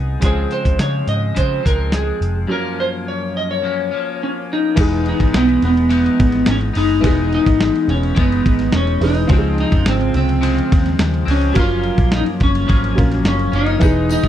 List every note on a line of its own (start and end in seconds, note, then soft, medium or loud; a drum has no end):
0.00 0.16 C2 medium
0.00 0.17 G#3 medium
0.00 0.24 B3 soft
0.00 0.18 D#4 medium
0.00 0.24 D#4 medium
0.00 0.19 E4 medium
0.00 2.50 G#4 medium
0.00 0.20 B4 medium
0.20 0.45 C#2 medium
0.20 1.34 C#3 medium
0.20 1.36 F3 medium
0.20 2.45 G#3 soft
0.20 2.45 C#4 soft
0.20 2.46 F4 soft
0.20 kick loud
0.20 closed hi-hat medium
0.24 1.36 G#3 medium
0.24 1.38 C4 medium
0.24 0.53 G#4 loud
0.24 2.47 C5 medium
0.51 0.78 C5 medium
0.51 closed hi-hat soft
0.65 0.77 C#2 medium
0.65 kick medium
0.65 closed hi-hat soft
0.79 1.02 C#3 medium
0.79 1.09 C#5 medium
0.79 snare medium
0.79 closed hi-hat medium
1.07 1.30 G#2 medium
1.07 1.38 D#5 medium
1.07 closed hi-hat medium
1.35 1.64 C#3 medium
1.35 1.59 C#3 medium
1.35 1.65 F3 medium
1.35 1.64 G#3 medium
1.35 1.66 C5 medium
1.35 kick medium
1.35 closed hi-hat medium
1.39 1.62 C4 medium
1.63 2.11 C#2 medium
1.63 2.49 F3 soft
1.63 2.50 G#3 soft
1.63 2.49 C4 soft
1.63 1.92 A#4 medium
1.63 kick medium
1.63 closed hi-hat medium
1.92 2.33 G#4 medium
1.92 snare loud
1.92 closed hi-hat medium
2.21 2.44 F1 medium
2.21 closed hi-hat medium
2.47 3.61 F#2 medium
2.47 3.63 F3 medium
2.47 4.72 F#3 medium
2.47 3.64 A#3 medium
2.47 4.73 C#4 medium
2.47 4.74 F4 soft
2.52 3.65 C#4 medium
2.52 2.80 A#4 medium
2.52 4.74 A#4 medium
2.80 2.88 C5 medium
3.08 3.36 C#5 medium
3.37 3.50 D#5 medium
3.51 4.49 C#5 medium
3.62 3.91 F#2 medium
3.62 3.92 F3 medium
3.62 3.92 A#3 medium
3.62 3.90 C#4 medium
3.91 4.77 F3 soft
3.91 4.77 A#3 soft
3.91 4.77 C#4 medium
4.23 4.31 C#4 medium
4.53 5.04 D#4 loud
4.75 5.11 E1 loud
4.75 6.99 E3 medium
4.75 5.32 E3 medium
4.75 6.99 G#3 medium
4.75 5.34 G#3 medium
4.75 7.00 B3 medium
4.75 5.34 B3 medium
4.75 7.00 D#4 medium
4.75 5.35 D#4 medium
4.75 kick loud
4.75 crash loud
4.75 ride medium
4.80 7.01 G#4 medium
5.06 5.36 D#4 loud
5.06 ride soft
5.20 5.31 G#1 medium
5.20 kick medium
5.20 ride soft
5.33 5.57 B1 medium
5.33 5.88 E3 medium
5.33 5.90 G#3 medium
5.33 5.90 B3 medium
5.33 5.91 D#4 medium
5.33 snare loud
5.33 ride medium
5.37 5.62 B3 loud
5.49 ride soft
5.62 6.08 E1 medium
5.62 6.51 B3 medium
5.62 ride medium
5.77 ride soft
5.89 6.75 E3 medium
5.89 6.77 G#3 medium
5.89 6.75 B3 medium
5.89 6.72 D#4 medium
5.89 ride medium
6.06 ride soft
6.20 6.42 G#1 medium
6.20 kick loud
6.20 ride medium
6.32 snare soft
6.32 ride soft
6.46 6.70 G#1 medium
6.46 6.57 C#4 loud
6.46 snare loud
6.46 ride medium
6.61 ride soft
6.73 6.98 F#1 medium
6.73 7.02 G#3 soft
6.73 7.04 B3 soft
6.73 7.03 D#4 soft
6.73 7.34 D#4 loud
6.73 open hi-hat medium
6.73 ride medium
6.89 ride soft
7.00 7.37 E1 loud
7.00 8.96 E3 medium
7.00 8.14 E3 medium
7.00 8.97 G#3 medium
7.00 8.16 G#3 medium
7.00 8.97 B3 medium
7.00 8.98 D#4 medium
7.00 kick loud
7.00 ride medium
7.05 8.17 B3 medium
7.05 8.18 D#4 medium
7.05 8.99 G#4 medium
7.33 7.90 D#4 loud
7.33 ride soft
7.46 7.69 G#1 medium
7.46 kick loud
7.46 ride medium
7.60 snare loud
7.60 ride medium
7.76 ride soft
7.88 8.11 E1 loud
7.88 8.18 C#4 medium
7.88 ride medium
8.03 ride soft
8.15 8.40 F#1 loud
8.15 9.27 E3 medium
8.15 9.30 G#3 loud
8.15 9.31 B3 medium
8.15 kick loud
8.15 ride medium
8.19 8.76 B3 medium
8.19 9.31 D#4 medium
8.32 ride soft
8.46 8.68 G#1 medium
8.46 kick loud
8.46 ride medium
8.59 snare soft
8.59 ride soft
8.72 8.96 E1 medium
8.72 9.03 C#4 loud
8.72 snare loud
8.72 ride medium
8.87 ride soft
9.01 9.24 E1 loud
9.01 9.29 E3 medium
9.01 9.27 G#3 medium
9.01 9.30 B3 soft
9.01 9.30 D#4 medium
9.01 9.59 D#4 loud
9.01 9.30 G#4 medium
9.01 open hi-hat medium
9.01 ride medium
9.15 ride soft
9.27 9.64 C#2 loud
9.27 10.40 C#3 medium
9.27 11.51 F3 medium
9.27 10.42 F3 medium
9.27 11.51 G#3 medium
9.27 11.52 C4 medium
9.27 11.52 F4 medium
9.27 kick loud
9.27 ride medium
9.32 10.42 G#3 medium
9.32 10.42 C4 medium
9.32 9.37 F#4 medium
9.38 11.56 G#4 medium
9.58 9.88 D#4 loud
9.58 ride soft
9.72 9.83 F2 medium
9.72 kick medium
9.72 ride soft
9.86 10.09 G#1 medium
9.86 10.14 C4 medium
9.86 snare loud
9.86 ride medium
10.01 ride soft
10.14 10.60 C2 loud
10.14 10.96 C4 medium
10.14 ride medium
10.29 ride medium
10.41 11.27 C#3 medium
10.41 11.29 F3 loud
10.41 11.26 G#3 medium
10.41 11.24 C4 medium
10.41 ride medium
10.58 ride soft
10.72 10.94 D#2 loud
10.72 kick loud
10.72 ride medium
10.86 snare soft
10.86 ride soft
10.99 11.22 D#2 medium
10.99 snare loud
10.99 ride medium
11.14 ride soft
11.25 11.50 C#2 loud
11.25 11.56 G#3 medium
11.25 11.55 C4 medium
11.25 open hi-hat soft
11.25 ride medium
11.30 11.53 F3 soft
11.30 11.55 C#4 loud
11.41 ride soft
11.52 11.90 F#1 loud
11.52 12.66 F#2 medium
11.52 12.67 F3 medium
11.52 12.93 F#3 medium
11.52 12.94 A#3 medium
11.52 12.68 A#3 loud
11.52 12.94 C#4 medium
11.52 kick loud
11.52 ride medium
11.57 12.68 C#4 medium
11.57 12.95 F4 medium
11.57 12.15 F4 loud
11.57 12.96 A#4 medium
11.83 ride soft
11.98 12.21 A#1 medium
11.98 kick loud
11.98 ride soft
12.12 snare loud
12.12 ride medium
12.16 12.23 D#4 loud
12.26 ride soft
12.40 12.63 F#1 loud
12.40 13.27 C#4 loud
12.40 kick loud
12.40 ride medium
12.55 ride medium
12.67 12.92 G#1 loud
12.67 13.53 F#2 medium
12.67 13.53 F3 medium
12.67 13.53 A#3 medium
12.67 13.51 C#4 medium
12.67 kick loud
12.67 ride medium
12.84 ride soft
12.95 13.20 A#1 medium
12.95 13.81 F#3 medium
12.95 13.81 A#3 medium
12.95 13.82 C#4 medium
12.95 13.82 F4 medium
12.95 13.82 A#4 medium
12.95 kick loud
12.95 ride medium
13.12 snare soft
13.12 ride soft
13.24 13.47 F#1 loud
13.24 snare loud
13.24 ride medium
13.28 13.53 C#4 medium
13.39 ride soft
13.52 13.76 F#1 medium
13.52 13.81 A#3 medium
13.52 13.81 C#4 medium
13.52 14.11 D#4 loud
13.52 ride medium
13.56 13.81 F3 soft
13.66 ride soft
13.79 14.16 E1 loud
13.79 14.28 E3 medium
13.79 14.28 G#3 medium
13.79 14.28 B3 medium
13.79 14.28 D#4 medium
13.79 kick loud
13.79 ride medium
13.79 tambourine soft
13.83 14.28 D#4 medium
13.83 14.28 G#4 medium
14.09 14.28 D#4 loud
14.09 ride soft
14.09 tambourine soft
14.23 14.28 G#1 loud
14.23 kick medium
14.23 ride soft